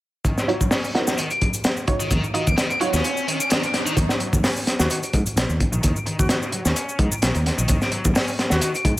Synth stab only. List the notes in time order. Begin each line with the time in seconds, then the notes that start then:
0.48 D#4 F4 F#4 C#5
0.94 D#4 F4 F#4 A#4
1.88 D#4 F4 F#4 C#5
2.34 D#4 F4 F#4 D#5
2.80 D#4 F4 F#4 C#5